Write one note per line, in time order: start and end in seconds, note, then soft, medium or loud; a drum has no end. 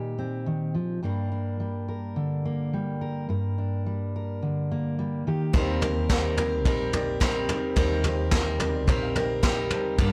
0.00 1.00 A#2 soft
0.00 0.45 D#3 soft
0.00 0.74 G3 soft
0.00 1.00 D#4 soft
0.00 1.05 G4 soft
0.19 1.00 C4 soft
0.46 0.75 D#3 soft
0.75 1.03 F3 soft
1.03 3.28 G2 medium
1.03 1.59 G3 soft
1.03 2.45 A#3 soft
1.03 1.31 D4 soft
1.03 1.88 A#4 soft
1.32 3.57 D4 soft
1.60 2.73 G3 soft
1.88 3.01 A#4 soft
2.16 3.26 D3 soft
2.45 4.71 A#3 soft
2.73 3.86 G3 soft
3.01 3.29 A#4 soft
3.29 5.26 G2 medium
3.29 4.14 A#4 soft
3.58 5.26 D4 soft
3.86 4.97 G3 soft
4.16 5.24 A#4 soft
4.42 5.23 D3 soft
4.71 7.50 A#3 soft
4.99 5.23 G3 medium
5.27 5.51 D#3 medium
5.27 7.78 G4 medium
5.53 7.73 D#2 medium
5.53 6.65 D#2 loud
5.53 5.82 D#3 medium
5.53 7.73 D#3 medium
5.53 5.78 G3 loud
5.53 5.82 G3 medium
5.53 5.78 C4 loud
5.53 5.82 C4 loud
5.53 5.78 D#4 loud
5.53 5.82 G4 medium
5.53 5.78 A#4 loud
5.53 5.80 A#4 loud
5.53 5.79 C5 loud
5.53 kick loud
5.53 floor tom medium
5.81 6.06 G3 medium
5.81 6.06 C4 medium
5.81 6.09 C4 medium
5.81 6.07 D#4 medium
5.81 6.09 G4 medium
5.81 6.10 A#4 medium
5.81 6.07 A#4 medium
5.81 6.07 C5 loud
5.81 floor tom medium
6.09 6.38 D#3 medium
6.09 6.34 G3 medium
6.09 6.38 G3 loud
6.09 6.34 C4 medium
6.09 6.38 C4 medium
6.09 6.34 D#4 medium
6.09 6.37 G4 loud
6.09 6.34 A#4 medium
6.09 6.36 A#4 medium
6.09 6.35 C5 loud
6.09 kick loud
6.09 snare loud
6.09 floor tom medium
6.37 6.62 G3 medium
6.37 6.62 C4 medium
6.37 6.65 C4 medium
6.37 6.62 D#4 medium
6.37 6.66 G4 medium
6.37 6.66 A#4 medium
6.37 6.62 A#4 medium
6.37 6.62 C5 loud
6.37 floor tom medium
6.65 7.51 A#1 loud
6.65 6.90 G3 loud
6.65 6.93 G3 medium
6.65 6.90 C4 medium
6.65 6.94 C4 medium
6.65 6.90 D#4 medium
6.65 6.93 G4 medium
6.65 6.90 A#4 medium
6.65 6.92 A#4 medium
6.65 6.91 C5 loud
6.65 kick loud
6.65 floor tom medium
6.93 7.18 G3 medium
6.93 7.18 C4 medium
6.93 7.20 C4 medium
6.93 7.18 D#4 medium
6.93 7.20 G4 medium
6.93 7.21 A#4 medium
6.93 7.18 A#4 medium
6.93 7.18 D5 loud
6.93 floor tom medium
7.20 7.75 D#3 medium
7.20 7.45 G3 medium
7.20 7.76 G3 medium
7.20 7.46 C4 medium
7.20 7.76 C4 medium
7.20 7.46 D#4 medium
7.20 7.77 G4 medium
7.20 7.46 A#4 medium
7.20 7.77 A#4 loud
7.20 7.46 C5 loud
7.20 kick loud
7.20 snare loud
7.20 floor tom medium
7.48 7.73 G3 medium
7.48 7.73 C4 medium
7.48 7.73 D#4 medium
7.48 7.73 A#4 medium
7.48 7.74 C5 loud
7.48 floor tom medium
7.76 8.88 D#2 loud
7.76 9.95 D#2 medium
7.76 8.04 D#3 medium
7.76 9.95 D#3 medium
7.76 8.01 G3 loud
7.76 8.05 G3 medium
7.76 8.01 C4 loud
7.76 8.05 C4 medium
7.76 8.01 D#4 loud
7.76 8.04 G4 loud
7.76 8.01 A#4 loud
7.76 8.03 A#4 loud
7.76 8.02 C5 loud
7.76 kick loud
7.76 floor tom medium
8.04 8.29 G3 medium
8.04 8.29 C4 medium
8.04 8.31 C4 medium
8.04 8.29 D#4 medium
8.04 8.32 G4 medium
8.04 8.32 A#4 medium
8.04 8.29 A#4 medium
8.04 8.30 C5 loud
8.04 floor tom medium
8.31 8.60 D#3 medium
8.31 8.56 G3 medium
8.31 8.60 G3 medium
8.31 8.57 C4 medium
8.31 8.60 C4 loud
8.31 8.57 D#4 medium
8.31 8.60 G4 medium
8.31 8.57 A#4 medium
8.31 8.58 A#4 medium
8.31 8.57 C5 loud
8.31 kick loud
8.31 snare loud
8.31 floor tom medium
8.59 8.84 G3 medium
8.59 8.84 C4 medium
8.59 8.87 C4 medium
8.59 8.84 D#4 medium
8.59 8.88 G4 medium
8.59 8.88 A#4 medium
8.59 8.85 A#4 medium
8.59 8.85 C5 loud
8.59 floor tom medium
8.74 8.87 D5 medium
8.87 9.74 A#1 loud
8.87 9.12 G3 loud
8.87 9.15 G3 medium
8.87 9.12 C4 loud
8.87 9.16 C4 medium
8.87 9.12 D#4 loud
8.87 9.16 G4 medium
8.87 9.12 A#4 loud
8.87 9.14 A#4 medium
8.87 9.13 C5 loud
8.87 9.01 D#5 medium
8.87 kick loud
8.87 floor tom medium
9.03 9.15 F5 medium
9.15 9.40 G3 medium
9.15 9.40 C4 medium
9.15 9.42 C4 soft
9.15 9.40 D#4 medium
9.15 9.43 G4 medium
9.15 9.43 A#4 medium
9.15 9.41 A#4 medium
9.15 9.41 C5 loud
9.15 9.42 G5 medium
9.15 floor tom medium
9.43 9.98 D#3 medium
9.43 9.99 G3 loud
9.43 9.68 G3 medium
9.43 9.68 C4 medium
9.43 9.99 C4 medium
9.43 9.68 D#4 medium
9.43 9.99 G4 loud
9.43 9.68 A#4 medium
9.43 10.00 A#4 loud
9.43 9.68 C5 loud
9.43 9.69 G5 medium
9.43 kick loud
9.43 snare loud
9.43 floor tom medium
9.70 9.95 G3 medium
9.70 9.95 C4 medium
9.70 9.95 D#4 medium
9.70 9.96 A#4 medium
9.70 9.96 C5 loud
9.70 9.97 A5 medium
9.70 floor tom medium
9.98 10.12 G1 medium
9.98 10.12 G2 medium
9.98 10.12 G2 loud
9.98 10.12 G2 medium
9.98 10.12 D3 medium
9.98 10.12 G3 loud
9.98 10.12 A#3 loud
9.98 10.12 A#3 medium
9.98 10.12 D4 loud
9.98 10.12 D4 medium
9.98 10.12 G4 medium
9.98 10.12 A#4 loud
9.98 10.12 D5 loud
9.98 kick loud
9.98 floor tom medium